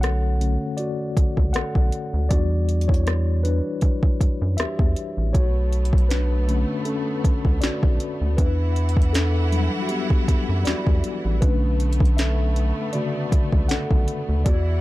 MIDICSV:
0, 0, Header, 1, 5, 480
1, 0, Start_track
1, 0, Key_signature, 2, "minor"
1, 0, Tempo, 759494
1, 1458, Time_signature, 4, 2, 24, 8
1, 9359, End_track
2, 0, Start_track
2, 0, Title_t, "Tine electric piano"
2, 0, Program_c, 0, 4
2, 0, Control_c, 0, 64, 127
2, 0, Note_on_c, 0, 50, 57
2, 0, Note_on_c, 0, 57, 51
2, 0, Note_on_c, 0, 61, 62
2, 0, Note_on_c, 0, 66, 82
2, 0, Note_on_c, 0, 73, 100
2, 7, Note_on_c, 0, 78, 107
2, 21, Note_on_c, 0, 69, 81
2, 230, Note_off_c, 0, 50, 0
2, 232, Note_off_c, 0, 57, 0
2, 233, Note_off_c, 0, 61, 0
2, 254, Note_on_c, 0, 50, 48
2, 257, Note_on_c, 0, 57, 42
2, 259, Note_on_c, 0, 61, 51
2, 472, Note_off_c, 0, 50, 0
2, 473, Note_off_c, 0, 57, 0
2, 474, Note_off_c, 0, 69, 0
2, 475, Note_off_c, 0, 61, 0
2, 487, Note_on_c, 0, 74, 98
2, 500, Note_off_c, 0, 66, 0
2, 500, Note_on_c, 0, 66, 78
2, 507, Note_off_c, 0, 78, 0
2, 947, Note_off_c, 0, 74, 0
2, 954, Note_off_c, 0, 66, 0
2, 967, Note_on_c, 0, 78, 105
2, 981, Note_on_c, 0, 69, 84
2, 1434, Note_off_c, 0, 69, 0
2, 1449, Note_on_c, 0, 74, 108
2, 1454, Note_on_c, 0, 52, 55
2, 1458, Note_on_c, 0, 55, 50
2, 1461, Note_on_c, 0, 62, 60
2, 1463, Note_on_c, 0, 66, 84
2, 1466, Control_c, 0, 64, 0
2, 1467, Note_off_c, 0, 78, 0
2, 1468, Note_off_c, 0, 73, 0
2, 1595, Control_c, 0, 64, 127
2, 1805, Note_off_c, 0, 66, 0
2, 1819, Note_on_c, 0, 73, 96
2, 1833, Note_on_c, 0, 64, 70
2, 1834, Note_off_c, 0, 74, 0
2, 2149, Note_off_c, 0, 73, 0
2, 2156, Note_off_c, 0, 64, 0
2, 2170, Note_on_c, 0, 71, 98
2, 2177, Note_off_c, 0, 62, 0
2, 2184, Note_on_c, 0, 62, 76
2, 2876, Note_off_c, 0, 62, 0
2, 2888, Note_on_c, 0, 76, 100
2, 2903, Note_on_c, 0, 67, 78
2, 2916, Note_off_c, 0, 71, 0
2, 3348, Note_off_c, 0, 76, 0
2, 3351, Note_off_c, 0, 52, 0
2, 3353, Note_off_c, 0, 55, 0
2, 3355, Note_off_c, 0, 67, 0
2, 3369, Note_on_c, 0, 73, 98
2, 3383, Note_on_c, 0, 66, 81
2, 3385, Control_c, 0, 64, 0
2, 3502, Control_c, 0, 64, 127
2, 3835, Note_off_c, 0, 66, 0
2, 3849, Note_on_c, 0, 71, 97
2, 3862, Note_on_c, 0, 62, 73
2, 3868, Note_off_c, 0, 73, 0
2, 4094, Note_on_c, 0, 50, 54
2, 4098, Note_on_c, 0, 57, 52
2, 4102, Note_on_c, 0, 61, 61
2, 4315, Note_off_c, 0, 62, 0
2, 4329, Note_on_c, 0, 69, 89
2, 4336, Note_off_c, 0, 61, 0
2, 4343, Note_on_c, 0, 61, 73
2, 4348, Note_off_c, 0, 71, 0
2, 4791, Note_off_c, 0, 50, 0
2, 4793, Note_off_c, 0, 57, 0
2, 4795, Note_off_c, 0, 61, 0
2, 4808, Note_on_c, 0, 74, 94
2, 4822, Note_on_c, 0, 66, 77
2, 4828, Note_off_c, 0, 69, 0
2, 5275, Note_off_c, 0, 66, 0
2, 5290, Note_on_c, 0, 71, 92
2, 5304, Note_on_c, 0, 62, 75
2, 5306, Control_c, 0, 64, 0
2, 5308, Note_off_c, 0, 74, 0
2, 5429, Control_c, 0, 64, 127
2, 5756, Note_off_c, 0, 62, 0
2, 5769, Note_on_c, 0, 69, 97
2, 5783, Note_on_c, 0, 62, 76
2, 5788, Note_off_c, 0, 71, 0
2, 6014, Note_off_c, 0, 62, 0
2, 6015, Note_on_c, 0, 54, 57
2, 6018, Note_on_c, 0, 55, 50
2, 6022, Note_on_c, 0, 62, 63
2, 6207, Note_on_c, 0, 66, 67
2, 6226, Note_off_c, 0, 69, 0
2, 6249, Note_on_c, 0, 67, 87
2, 6253, Note_off_c, 0, 66, 0
2, 6263, Note_on_c, 0, 59, 68
2, 6343, Note_off_c, 0, 54, 0
2, 6345, Note_off_c, 0, 55, 0
2, 6347, Note_off_c, 0, 62, 0
2, 6708, Note_off_c, 0, 67, 0
2, 6716, Note_off_c, 0, 59, 0
2, 6730, Note_on_c, 0, 74, 96
2, 6744, Note_on_c, 0, 66, 80
2, 7196, Note_off_c, 0, 66, 0
2, 7210, Note_on_c, 0, 71, 96
2, 7215, Note_on_c, 0, 50, 57
2, 7218, Note_on_c, 0, 57, 52
2, 7223, Note_on_c, 0, 61, 62
2, 7224, Note_on_c, 0, 62, 74
2, 7227, Control_c, 0, 64, 0
2, 7228, Note_off_c, 0, 74, 0
2, 7337, Control_c, 0, 64, 127
2, 7676, Note_off_c, 0, 62, 0
2, 7690, Note_on_c, 0, 76, 100
2, 7704, Note_on_c, 0, 69, 81
2, 7708, Note_off_c, 0, 71, 0
2, 7911, Note_off_c, 0, 50, 0
2, 7913, Note_off_c, 0, 57, 0
2, 7915, Note_off_c, 0, 61, 0
2, 8156, Note_off_c, 0, 69, 0
2, 8170, Note_on_c, 0, 74, 100
2, 8177, Note_on_c, 0, 50, 49
2, 8179, Note_on_c, 0, 57, 46
2, 8182, Note_on_c, 0, 49, 58
2, 8185, Note_on_c, 0, 66, 74
2, 8188, Note_off_c, 0, 76, 0
2, 8394, Note_off_c, 0, 50, 0
2, 8395, Note_off_c, 0, 57, 0
2, 8396, Note_off_c, 0, 49, 0
2, 8636, Note_off_c, 0, 66, 0
2, 8649, Note_on_c, 0, 78, 100
2, 8663, Note_on_c, 0, 69, 78
2, 8669, Note_off_c, 0, 74, 0
2, 9108, Note_off_c, 0, 78, 0
2, 9116, Note_off_c, 0, 69, 0
2, 9130, Note_on_c, 0, 74, 98
2, 9144, Note_on_c, 0, 66, 80
2, 9145, Control_c, 0, 64, 0
2, 9252, Control_c, 0, 64, 127
2, 9359, Note_off_c, 0, 66, 0
2, 9359, Note_off_c, 0, 74, 0
2, 9359, End_track
3, 0, Start_track
3, 0, Title_t, "String section"
3, 0, Program_c, 1, 48
3, 3377, Note_on_c, 1, 57, 76
3, 3378, Note_on_c, 1, 59, 72
3, 5278, Note_off_c, 1, 57, 0
3, 5279, Note_off_c, 1, 59, 0
3, 5299, Note_on_c, 1, 52, 80
3, 5299, Note_on_c, 1, 64, 83
3, 5299, Note_on_c, 1, 78, 72
3, 7199, Note_off_c, 1, 52, 0
3, 7199, Note_off_c, 1, 64, 0
3, 7199, Note_off_c, 1, 78, 0
3, 7218, Note_on_c, 1, 57, 77
3, 7219, Note_on_c, 1, 59, 70
3, 9119, Note_off_c, 1, 57, 0
3, 9119, Note_off_c, 1, 59, 0
3, 9138, Note_on_c, 1, 52, 83
3, 9138, Note_on_c, 1, 78, 77
3, 9139, Note_on_c, 1, 64, 88
3, 9359, Note_off_c, 1, 52, 0
3, 9359, Note_off_c, 1, 64, 0
3, 9359, Note_off_c, 1, 78, 0
3, 9359, End_track
4, 0, Start_track
4, 0, Title_t, "Analog synth bass"
4, 0, Program_c, 2, 38
4, 0, Note_on_c, 2, 35, 110
4, 362, Note_off_c, 2, 35, 0
4, 739, Note_on_c, 2, 37, 49
4, 791, Note_off_c, 2, 37, 0
4, 868, Note_on_c, 2, 37, 83
4, 967, Note_off_c, 2, 37, 0
4, 981, Note_on_c, 2, 35, 49
4, 1032, Note_off_c, 2, 35, 0
4, 1109, Note_on_c, 2, 35, 91
4, 1207, Note_off_c, 2, 35, 0
4, 1350, Note_on_c, 2, 38, 86
4, 1448, Note_off_c, 2, 38, 0
4, 1459, Note_on_c, 2, 40, 103
4, 2283, Note_off_c, 2, 40, 0
4, 2659, Note_on_c, 2, 42, 49
4, 2711, Note_off_c, 2, 42, 0
4, 2791, Note_on_c, 2, 42, 87
4, 2888, Note_off_c, 2, 42, 0
4, 2900, Note_on_c, 2, 40, 48
4, 2951, Note_off_c, 2, 40, 0
4, 3029, Note_on_c, 2, 40, 100
4, 3127, Note_off_c, 2, 40, 0
4, 3269, Note_on_c, 2, 33, 89
4, 3367, Note_off_c, 2, 33, 0
4, 3379, Note_on_c, 2, 35, 105
4, 4203, Note_off_c, 2, 35, 0
4, 4580, Note_on_c, 2, 37, 48
4, 4631, Note_off_c, 2, 37, 0
4, 4709, Note_on_c, 2, 37, 87
4, 4807, Note_off_c, 2, 37, 0
4, 4821, Note_on_c, 2, 35, 47
4, 4872, Note_off_c, 2, 35, 0
4, 4949, Note_on_c, 2, 35, 91
4, 5047, Note_off_c, 2, 35, 0
4, 5190, Note_on_c, 2, 38, 85
4, 5288, Note_off_c, 2, 38, 0
4, 5298, Note_on_c, 2, 40, 102
4, 6123, Note_off_c, 2, 40, 0
4, 6500, Note_on_c, 2, 42, 50
4, 6551, Note_off_c, 2, 42, 0
4, 6630, Note_on_c, 2, 42, 82
4, 6728, Note_off_c, 2, 42, 0
4, 6741, Note_on_c, 2, 40, 48
4, 6792, Note_off_c, 2, 40, 0
4, 6869, Note_on_c, 2, 40, 99
4, 6967, Note_off_c, 2, 40, 0
4, 7110, Note_on_c, 2, 33, 82
4, 7208, Note_off_c, 2, 33, 0
4, 7219, Note_on_c, 2, 35, 99
4, 8043, Note_off_c, 2, 35, 0
4, 8421, Note_on_c, 2, 37, 49
4, 8472, Note_off_c, 2, 37, 0
4, 8549, Note_on_c, 2, 37, 90
4, 8647, Note_off_c, 2, 37, 0
4, 8661, Note_on_c, 2, 35, 51
4, 8712, Note_off_c, 2, 35, 0
4, 8790, Note_on_c, 2, 35, 91
4, 8888, Note_off_c, 2, 35, 0
4, 9031, Note_on_c, 2, 38, 86
4, 9128, Note_off_c, 2, 38, 0
4, 9140, Note_on_c, 2, 40, 101
4, 9359, Note_off_c, 2, 40, 0
4, 9359, End_track
5, 0, Start_track
5, 0, Title_t, "Drums"
5, 20, Note_on_c, 9, 42, 60
5, 25, Note_on_c, 9, 37, 98
5, 83, Note_off_c, 9, 42, 0
5, 88, Note_off_c, 9, 37, 0
5, 260, Note_on_c, 9, 42, 55
5, 324, Note_off_c, 9, 42, 0
5, 490, Note_on_c, 9, 42, 57
5, 554, Note_off_c, 9, 42, 0
5, 738, Note_on_c, 9, 36, 97
5, 740, Note_on_c, 9, 42, 76
5, 801, Note_off_c, 9, 36, 0
5, 803, Note_off_c, 9, 42, 0
5, 867, Note_on_c, 9, 36, 73
5, 930, Note_off_c, 9, 36, 0
5, 973, Note_on_c, 9, 42, 71
5, 985, Note_on_c, 9, 37, 110
5, 1036, Note_off_c, 9, 42, 0
5, 1048, Note_off_c, 9, 37, 0
5, 1108, Note_on_c, 9, 36, 92
5, 1171, Note_off_c, 9, 36, 0
5, 1216, Note_on_c, 9, 42, 59
5, 1279, Note_off_c, 9, 42, 0
5, 1457, Note_on_c, 9, 36, 106
5, 1458, Note_on_c, 9, 42, 81
5, 1520, Note_off_c, 9, 36, 0
5, 1521, Note_off_c, 9, 42, 0
5, 1698, Note_on_c, 9, 42, 54
5, 1761, Note_off_c, 9, 42, 0
5, 1778, Note_on_c, 9, 42, 54
5, 1827, Note_on_c, 9, 36, 95
5, 1841, Note_off_c, 9, 42, 0
5, 1858, Note_on_c, 9, 42, 59
5, 1890, Note_off_c, 9, 36, 0
5, 1921, Note_off_c, 9, 42, 0
5, 1938, Note_on_c, 9, 42, 59
5, 1944, Note_on_c, 9, 37, 101
5, 2002, Note_off_c, 9, 42, 0
5, 2007, Note_off_c, 9, 37, 0
5, 2179, Note_on_c, 9, 42, 55
5, 2243, Note_off_c, 9, 42, 0
5, 2410, Note_on_c, 9, 42, 52
5, 2416, Note_on_c, 9, 36, 85
5, 2473, Note_off_c, 9, 42, 0
5, 2479, Note_off_c, 9, 36, 0
5, 2545, Note_on_c, 9, 36, 100
5, 2609, Note_off_c, 9, 36, 0
5, 2658, Note_on_c, 9, 36, 95
5, 2661, Note_on_c, 9, 42, 73
5, 2721, Note_off_c, 9, 36, 0
5, 2724, Note_off_c, 9, 42, 0
5, 2893, Note_on_c, 9, 42, 67
5, 2906, Note_on_c, 9, 37, 110
5, 2957, Note_off_c, 9, 42, 0
5, 2969, Note_off_c, 9, 37, 0
5, 3028, Note_on_c, 9, 36, 98
5, 3091, Note_off_c, 9, 36, 0
5, 3137, Note_on_c, 9, 42, 62
5, 3200, Note_off_c, 9, 42, 0
5, 3377, Note_on_c, 9, 36, 107
5, 3379, Note_on_c, 9, 42, 79
5, 3441, Note_off_c, 9, 36, 0
5, 3442, Note_off_c, 9, 42, 0
5, 3618, Note_on_c, 9, 42, 55
5, 3681, Note_off_c, 9, 42, 0
5, 3698, Note_on_c, 9, 42, 56
5, 3747, Note_on_c, 9, 36, 96
5, 3762, Note_off_c, 9, 42, 0
5, 3778, Note_on_c, 9, 42, 55
5, 3810, Note_off_c, 9, 36, 0
5, 3841, Note_off_c, 9, 42, 0
5, 3858, Note_on_c, 9, 42, 59
5, 3864, Note_on_c, 9, 38, 99
5, 3921, Note_off_c, 9, 42, 0
5, 3927, Note_off_c, 9, 38, 0
5, 4100, Note_on_c, 9, 42, 58
5, 4163, Note_off_c, 9, 42, 0
5, 4331, Note_on_c, 9, 42, 54
5, 4394, Note_off_c, 9, 42, 0
5, 4578, Note_on_c, 9, 36, 99
5, 4581, Note_on_c, 9, 42, 77
5, 4641, Note_off_c, 9, 36, 0
5, 4644, Note_off_c, 9, 42, 0
5, 4707, Note_on_c, 9, 36, 78
5, 4770, Note_off_c, 9, 36, 0
5, 4813, Note_on_c, 9, 42, 67
5, 4826, Note_on_c, 9, 38, 113
5, 4877, Note_off_c, 9, 42, 0
5, 4889, Note_off_c, 9, 38, 0
5, 4948, Note_on_c, 9, 36, 98
5, 5011, Note_off_c, 9, 36, 0
5, 5057, Note_on_c, 9, 42, 62
5, 5120, Note_off_c, 9, 42, 0
5, 5297, Note_on_c, 9, 36, 107
5, 5298, Note_on_c, 9, 42, 78
5, 5360, Note_off_c, 9, 36, 0
5, 5361, Note_off_c, 9, 42, 0
5, 5538, Note_on_c, 9, 42, 57
5, 5601, Note_off_c, 9, 42, 0
5, 5618, Note_on_c, 9, 42, 54
5, 5667, Note_on_c, 9, 36, 92
5, 5681, Note_off_c, 9, 42, 0
5, 5698, Note_on_c, 9, 42, 54
5, 5730, Note_off_c, 9, 36, 0
5, 5762, Note_off_c, 9, 42, 0
5, 5779, Note_on_c, 9, 42, 65
5, 5784, Note_on_c, 9, 38, 101
5, 5842, Note_off_c, 9, 42, 0
5, 5848, Note_off_c, 9, 38, 0
5, 6019, Note_on_c, 9, 42, 57
5, 6082, Note_off_c, 9, 42, 0
5, 6250, Note_on_c, 9, 42, 56
5, 6313, Note_off_c, 9, 42, 0
5, 6385, Note_on_c, 9, 36, 102
5, 6448, Note_off_c, 9, 36, 0
5, 6498, Note_on_c, 9, 36, 96
5, 6500, Note_on_c, 9, 42, 77
5, 6561, Note_off_c, 9, 36, 0
5, 6564, Note_off_c, 9, 42, 0
5, 6733, Note_on_c, 9, 42, 72
5, 6745, Note_on_c, 9, 38, 108
5, 6796, Note_off_c, 9, 42, 0
5, 6808, Note_off_c, 9, 38, 0
5, 6868, Note_on_c, 9, 36, 93
5, 6931, Note_off_c, 9, 36, 0
5, 6976, Note_on_c, 9, 42, 67
5, 7040, Note_off_c, 9, 42, 0
5, 7217, Note_on_c, 9, 36, 109
5, 7218, Note_on_c, 9, 42, 81
5, 7281, Note_off_c, 9, 36, 0
5, 7281, Note_off_c, 9, 42, 0
5, 7457, Note_on_c, 9, 42, 58
5, 7521, Note_off_c, 9, 42, 0
5, 7537, Note_on_c, 9, 42, 57
5, 7587, Note_on_c, 9, 36, 96
5, 7600, Note_off_c, 9, 42, 0
5, 7617, Note_on_c, 9, 42, 57
5, 7650, Note_off_c, 9, 36, 0
5, 7681, Note_off_c, 9, 42, 0
5, 7699, Note_on_c, 9, 42, 62
5, 7704, Note_on_c, 9, 38, 102
5, 7762, Note_off_c, 9, 42, 0
5, 7768, Note_off_c, 9, 38, 0
5, 7939, Note_on_c, 9, 42, 57
5, 8002, Note_off_c, 9, 42, 0
5, 8171, Note_on_c, 9, 42, 59
5, 8234, Note_off_c, 9, 42, 0
5, 8419, Note_on_c, 9, 36, 97
5, 8421, Note_on_c, 9, 42, 77
5, 8482, Note_off_c, 9, 36, 0
5, 8484, Note_off_c, 9, 42, 0
5, 8548, Note_on_c, 9, 36, 83
5, 8611, Note_off_c, 9, 36, 0
5, 8653, Note_on_c, 9, 42, 74
5, 8666, Note_on_c, 9, 38, 116
5, 8717, Note_off_c, 9, 42, 0
5, 8729, Note_off_c, 9, 38, 0
5, 8788, Note_on_c, 9, 36, 96
5, 8852, Note_off_c, 9, 36, 0
5, 8897, Note_on_c, 9, 42, 66
5, 8960, Note_off_c, 9, 42, 0
5, 9137, Note_on_c, 9, 42, 83
5, 9138, Note_on_c, 9, 36, 109
5, 9200, Note_off_c, 9, 42, 0
5, 9201, Note_off_c, 9, 36, 0
5, 9359, End_track
0, 0, End_of_file